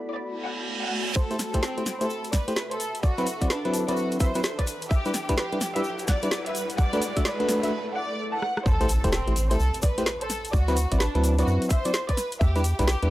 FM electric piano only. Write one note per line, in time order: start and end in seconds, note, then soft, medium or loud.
0.00 1.14 B3 medium
0.00 1.14 F#4 medium
0.00 1.14 A4 medium
0.00 1.14 D5 medium
1.31 1.36 A3 medium
1.31 1.36 E4 medium
1.31 1.36 G4 medium
1.31 1.36 C5 medium
1.54 1.59 A3 medium
1.54 1.59 E4 medium
1.54 1.59 G4 medium
1.54 1.59 C5 loud
1.77 1.83 A3 medium
1.77 1.83 E4 medium
1.77 1.83 G4 medium
1.77 1.83 C5 medium
2.01 2.06 A3 medium
2.01 2.06 E4 medium
2.01 2.06 G4 medium
2.01 2.06 C5 medium
2.48 2.53 A3 medium
2.48 2.53 E4 medium
2.48 2.53 G4 medium
2.48 2.53 C5 medium
3.18 3.27 F#3 medium
3.18 3.27 C4 medium
3.18 3.27 E4 medium
3.18 3.27 B4 loud
3.42 3.47 F#3 medium
3.42 3.47 C4 medium
3.42 3.47 E4 medium
3.42 3.47 D5 medium
3.65 3.85 F#3 medium
3.65 3.85 C4 medium
3.65 3.85 E4 medium
3.65 3.85 B4 medium
3.88 4.18 F#3 medium
3.88 4.18 C4 medium
3.88 4.18 E4 medium
3.88 4.18 B4 medium
4.20 4.32 F#3 medium
4.20 4.32 C4 medium
4.20 4.32 E4 medium
4.20 4.32 B4 medium
4.35 4.41 F#3 medium
4.35 4.41 C4 medium
4.35 4.41 E4 medium
4.35 4.41 B4 loud
5.06 5.11 G3 medium
5.06 5.11 D4 medium
5.06 5.11 E4 medium
5.06 5.11 B4 loud
5.29 5.34 G3 loud
5.29 5.34 D4 medium
5.29 5.34 E4 medium
5.29 5.34 B4 loud
5.53 5.58 G3 medium
5.53 5.58 D4 medium
5.53 5.58 E4 medium
5.53 5.58 B4 medium
5.76 5.81 G3 medium
5.76 5.81 D4 medium
5.76 5.81 E4 medium
5.76 5.81 B4 medium
6.23 6.28 G3 medium
6.23 6.28 D4 medium
6.23 6.28 E4 medium
6.23 6.28 B4 loud
6.93 7.02 A3 loud
6.93 7.02 D4 medium
6.93 7.02 F#4 medium
6.93 7.02 B4 loud
7.17 7.22 A3 medium
7.17 7.22 D4 medium
7.17 7.22 F#4 medium
7.17 7.22 E5 medium
7.40 7.60 A3 medium
7.40 7.60 D4 medium
7.40 7.60 F#4 medium
7.40 7.60 B4 loud
7.63 7.72 A3 medium
7.63 7.72 D4 medium
7.63 7.72 F#4 medium
7.63 7.72 B4 medium
8.81 8.86 A3 medium
8.81 8.86 E4 medium
8.81 8.86 G4 medium
8.81 8.86 C5 loud
9.04 9.09 A3 loud
9.04 9.09 E4 medium
9.04 9.09 G4 medium
9.04 9.09 C5 loud
9.28 9.33 A3 medium
9.28 9.33 E4 medium
9.28 9.33 G4 medium
9.28 9.33 C5 medium
9.51 9.56 A3 medium
9.51 9.56 E4 medium
9.51 9.56 G4 medium
9.51 9.56 C5 medium
9.98 10.03 A3 medium
9.98 10.03 E4 medium
9.98 10.03 G4 medium
9.98 10.03 C5 loud
10.68 10.77 F#3 loud
10.68 10.77 C4 medium
10.68 10.77 E4 medium
10.68 10.77 B4 loud
10.92 10.97 F#3 medium
10.92 10.97 C4 medium
10.92 10.97 E4 medium
10.92 10.97 D5 medium
11.15 11.35 F#3 medium
11.15 11.35 C4 medium
11.15 11.35 E4 medium
11.15 11.35 B4 medium
11.39 11.68 F#3 medium
11.39 11.68 C4 medium
11.39 11.68 E4 medium
11.39 11.68 B4 medium
11.85 11.91 F#3 medium
11.85 11.91 C4 medium
11.85 11.91 E4 medium
11.85 11.91 D5 medium
12.56 12.61 G3 medium
12.56 12.61 D4 medium
12.56 12.61 E4 medium
12.56 12.61 B4 loud
12.79 12.84 G3 medium
12.79 12.84 D4 medium
12.79 12.84 E4 medium
12.79 12.84 B4 loud
13.03 13.08 G3 medium
13.03 13.08 D4 medium
13.03 13.08 E4 medium
13.03 13.08 B4 medium